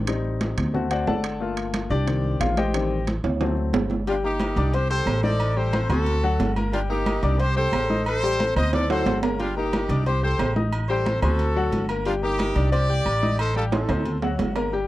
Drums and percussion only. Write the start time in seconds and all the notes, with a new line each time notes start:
0.07 high conga, high timbale
0.24 high conga
0.41 high conga, high timbale
0.58 high conga, low conga, high timbale
0.74 high conga, low conga
0.91 high conga, high timbale
1.07 high conga, low timbale
1.24 high timbale
1.41 high conga
1.57 high conga, high timbale
1.74 high conga, high timbale
1.91 high conga
2.07 high conga, high timbale
2.24 high conga
2.41 high conga, high timbale, low timbale
2.57 high conga, high timbale
2.74 high conga, high timbale
2.91 high conga
3.07 high conga, high timbale
3.24 high conga, low conga, high timbale
3.41 high conga, low conga, high timbale
3.57 high conga
3.73 high conga, low timbale
3.90 high conga, low timbale
4.07 high conga, low agogo
4.23 high conga
4.40 high conga, low agogo
4.56 high conga, low agogo
4.73 high conga, low agogo
4.90 high conga
5.07 high conga, low timbale, low agogo
5.23 high conga
5.40 high conga, low agogo
5.57 high conga
5.73 high conga, low agogo
5.90 high conga, low conga, low agogo
6.06 high conga, low agogo
6.23 high conga
6.40 high conga, low timbale, low agogo
6.56 high conga, low agogo
6.73 high conga, low agogo
6.90 high conga
7.06 high conga, low agogo
7.23 high conga, low agogo
7.40 high conga, low agogo
7.57 high conga
7.73 high conga, low timbale, low agogo
7.90 high conga
8.06 high conga, low agogo
8.23 high conga
8.40 high conga, low agogo
8.56 high conga, low conga, low agogo
8.73 high conga, low conga, high timbale, low agogo
8.90 high conga, high timbale
9.06 high conga, low timbale, low agogo
9.23 low timbale, low agogo
9.40 high conga, low agogo
9.57 high conga
9.73 high conga, low agogo
9.90 high conga, low agogo
10.06 high conga, low agogo
10.23 high conga
10.39 high conga, low timbale, low agogo
10.56 high conga
10.73 high conga, low agogo
10.90 high conga
11.06 high conga, low agogo
11.22 high conga, low conga, low agogo
11.39 high conga, low agogo
11.56 high conga
11.72 high conga, low agogo
11.89 low agogo
12.05 high conga, low agogo
12.23 high conga
12.39 high conga, low agogo
12.56 high conga, low agogo
12.73 high conga, low agogo
12.90 high conga
13.06 high conga, low agogo
13.23 high conga
13.39 high conga, low agogo
13.56 high conga
13.72 high conga, high timbale, low agogo
13.89 high conga, low conga, high timbale, low agogo
14.05 high conga, low conga, low agogo
14.22 high conga, low timbale
14.39 high conga, low timbale, low agogo
14.56 low timbale, low agogo
14.72 high conga